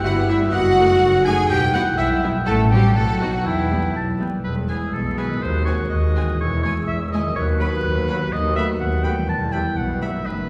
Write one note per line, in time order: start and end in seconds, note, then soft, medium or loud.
0.00 0.47 G1 medium
0.00 0.55 G2 medium
0.00 0.55 B3 medium
0.00 0.20 E4 medium
0.04 0.16 G3 medium
0.04 0.16 E4 medium
0.04 0.12 F#4 loud
0.04 0.16 F#4 loud
0.04 0.55 G4 medium
0.04 0.53 E5 medium
0.04 0.28 F#5 loud
0.04 0.28 F#5 medium
0.04 0.16 F#5 medium
0.04 0.13 F#5 loud
0.04 0.27 F#6 loud
0.17 0.29 B3 medium
0.17 0.29 G4 medium
0.22 0.55 E4 medium
0.28 0.41 G3 medium
0.28 0.52 E4 medium
0.28 0.40 E4 medium
0.28 0.41 E4 medium
0.28 0.39 E5 medium
0.28 0.37 E5 medium
0.28 0.35 E5 medium
0.28 0.37 E5 medium
0.28 0.52 E6 medium
0.38 0.55 G3 medium
0.42 0.53 B3 medium
0.42 0.54 G4 medium
0.52 0.93 F#1 medium
0.52 1.52 F#2 medium
0.52 1.24 F#4 loud
0.52 1.25 F#4 loud
0.52 1.00 D#5 medium
0.52 1.24 F#5 loud
0.52 1.25 F#5 loud
0.52 1.22 F#6 loud
0.70 1.52 A3 medium
0.78 0.86 A3 medium
0.78 0.86 D#4 medium
0.86 1.17 D#4 medium
1.01 1.41 F#1 medium
1.01 1.52 A4 medium
1.01 1.96 F#5 loud
1.18 1.52 D#4 medium
1.25 1.34 A3 medium
1.25 1.34 D#4 medium
1.25 1.49 G#4 loud
1.25 1.50 G#4 medium
1.25 1.36 G#5 loud
1.25 1.49 G#5 loud
1.25 1.50 G#5 loud
1.25 1.35 G#5 loud
1.25 1.48 G#6 loud
1.34 1.52 F#3 medium
1.49 1.90 E1 loud
1.49 2.50 E2 medium
1.49 1.57 G4 loud
1.49 1.61 G4 loud
1.49 1.74 G5 loud
1.49 1.58 G5 loud
1.49 1.76 G5 loud
1.49 1.74 G5 loud
1.49 1.72 G6 loud
1.67 2.49 G3 medium
1.73 1.82 B3 medium
1.73 1.82 E4 medium
1.73 1.84 F#4 loud
1.73 1.82 F#4 loud
1.73 1.82 F#5 loud
1.73 1.97 F#5 loud
1.73 1.99 F#5 medium
1.73 1.96 F#6 loud
1.83 2.14 E4 medium
1.97 2.38 B1 medium
1.97 2.22 E4 medium
1.97 2.22 E4 loud
1.97 2.49 B4 medium
1.97 2.09 E5 medium
1.97 2.06 E5 medium
1.97 2.49 G5 medium
1.97 2.21 E6 loud
2.16 2.49 E4 medium
2.24 2.31 B3 medium
2.24 2.31 E4 medium
2.31 2.49 B2 medium
2.46 2.88 A1 loud
2.46 2.98 A2 medium
2.46 2.70 A3 loud
2.46 2.54 A4 medium
2.46 2.58 A4 loud
2.46 2.55 A4 loud
2.46 2.70 A4 loud
2.46 2.82 F#5 loud
2.46 2.70 A5 loud
2.64 3.12 F#3 medium
2.71 2.96 G3 medium
2.71 2.83 G3 medium
2.71 2.80 C4 medium
2.71 2.80 F#4 medium
2.71 2.95 G4 medium
2.71 2.96 G4 medium
2.71 2.94 G5 loud
2.81 3.48 F#4 medium
2.81 2.99 C5 medium
2.95 3.37 B1 medium
2.95 3.48 B2 medium
2.95 3.04 A3 medium
2.95 3.20 A3 medium
2.95 3.20 A4 medium
2.95 3.21 A4 medium
2.95 3.44 F#5 medium
2.95 3.18 A5 loud
3.13 3.48 F#3 medium
3.20 3.45 F#3 medium
3.20 3.33 F#3 medium
3.20 3.29 B3 medium
3.20 3.29 D#4 medium
3.20 3.45 F#4 medium
3.20 3.26 F#4 medium
3.20 3.32 F#4 medium
3.20 3.45 F#4 medium
3.20 3.44 F#6 medium
3.29 3.48 D#4 medium
3.29 3.78 B4 medium
3.44 3.87 E2 medium
3.44 3.94 E3 medium
3.44 4.25 E3 medium
3.44 3.95 E3 medium
3.44 3.95 E4 medium
3.44 3.94 E4 medium
3.44 3.95 E4 medium
3.44 3.90 G5 medium
3.44 3.91 E6 medium
3.62 4.34 E4 medium
3.71 3.79 G3 medium
3.71 3.79 B3 medium
3.79 4.10 B4 medium
3.95 4.36 B1 medium
3.95 4.47 G4 medium
3.95 4.07 A5 medium
4.11 4.39 B4 medium
4.20 4.28 G3 medium
4.20 4.28 B3 medium
4.20 4.32 G5 medium
4.26 5.35 E3 medium
4.26 4.47 G3 medium
4.31 5.27 G#3 soft
4.36 5.39 E4 soft
4.40 5.42 B4 soft
4.44 4.85 E1 medium
4.44 4.85 E2 medium
4.44 6.36 G#3 medium
4.44 5.39 E4 medium
4.44 6.36 G#4 medium
4.44 4.55 B4 medium
4.44 5.38 E6 medium
4.69 4.78 B3 medium
4.69 4.95 G#4 medium
4.69 4.78 G#4 medium
4.69 4.77 G#5 medium
4.93 5.34 B1 medium
4.93 5.34 B2 medium
4.93 5.19 A4 medium
5.18 5.26 B3 medium
5.18 5.26 G#4 soft
5.18 5.44 B4 medium
5.18 5.25 G#5 medium
5.24 6.32 D#3 medium
5.29 6.25 G#3 soft
5.33 6.37 F#4 soft
5.38 5.82 D#2 medium
5.38 6.39 C5 soft
5.42 6.40 F#4 medium
5.42 5.65 C5 medium
5.42 6.40 F#6 medium
5.65 5.74 C4 medium
5.65 5.75 F#4 medium
5.65 5.89 C#5 medium
5.65 5.74 G#5 medium
5.90 6.31 D#2 medium
5.90 6.38 D#5 medium
6.16 6.23 C4 medium
6.16 6.24 F#4 medium
6.16 6.24 G#5 medium
6.22 7.30 E3 medium
6.27 7.32 G#3 soft
6.31 7.34 E4 medium
6.35 7.36 G#4 medium
6.35 7.39 G#4 medium
6.39 6.80 E1 medium
6.39 6.80 E2 medium
6.39 7.35 G#3 medium
6.39 7.37 E4 medium
6.39 6.62 C#5 loud
6.39 7.35 E6 medium
6.63 6.72 G#3 medium
6.63 6.71 E4 medium
6.63 6.74 C#5 medium
6.63 6.72 G#5 medium
6.87 7.28 E1 medium
6.87 7.29 E2 medium
6.87 6.98 E5 medium
7.12 7.21 G#3 medium
7.12 7.21 E4 medium
7.12 7.35 D#5 medium
7.12 7.21 G#5 medium
7.19 8.14 D#3 medium
7.23 9.24 F#3 medium
7.28 8.23 F#4 medium
7.32 8.28 B4 medium
7.32 7.47 C#5 loud
7.37 7.76 D#2 medium
7.37 7.77 D#2 medium
7.37 8.31 B3 medium
7.37 8.31 F#4 medium
7.37 8.33 B4 medium
7.37 8.33 F#6 medium
7.60 7.69 F#3 medium
7.60 7.69 F#4 medium
7.60 8.34 B4 loud
7.60 7.68 B5 medium
7.84 8.25 D#2 medium
8.08 8.17 F#3 medium
8.08 8.17 F#4 medium
8.08 8.16 B5 medium
8.16 9.22 D#3 medium
8.20 9.24 A3 medium
8.24 9.27 F#4 soft
8.29 9.24 B4 medium
8.29 8.55 D#5 loud
8.33 8.73 D#2 medium
8.33 10.22 B3 medium
8.33 9.25 F#4 medium
8.56 8.65 A3 medium
8.56 8.65 F#4 medium
8.56 8.66 B4 medium
8.56 8.67 E5 loud
8.56 8.65 B5 medium
8.56 8.64 F#6 medium
8.80 9.21 D#2 medium
8.80 9.05 F#5 loud
9.04 9.13 A3 medium
9.04 9.13 F#4 medium
9.04 9.14 B4 medium
9.04 9.28 G5 medium
9.04 9.12 B5 medium
9.04 9.11 F#6 medium
9.12 10.19 E3 medium
9.16 10.21 G3 medium
9.21 10.24 E4 soft
9.25 9.69 E2 medium
9.25 10.26 E4 medium
9.25 10.21 B4 soft
9.25 9.54 A5 medium
9.29 9.69 E1 medium
9.52 9.61 G3 medium
9.52 9.62 E4 soft
9.52 9.62 B4 medium
9.52 9.79 G5 loud
9.52 9.60 B5 medium
9.52 9.60 E6 medium
9.77 10.18 B1 medium
9.77 10.18 B2 medium
9.77 10.01 F#5 medium
10.02 10.10 G3 medium
10.02 10.09 E4 soft
10.02 10.11 B4 medium
10.02 10.27 E5 medium
10.02 10.10 B5 medium
10.02 10.09 E6 medium
10.09 10.49 F#2 medium
10.13 10.49 A3 soft
10.18 10.49 D#4 soft
10.22 10.49 F#1 medium
10.22 10.49 A3 medium
10.22 10.49 D#4 medium
10.22 10.49 B4 soft
10.22 10.49 B4 medium
10.26 10.49 F#2 medium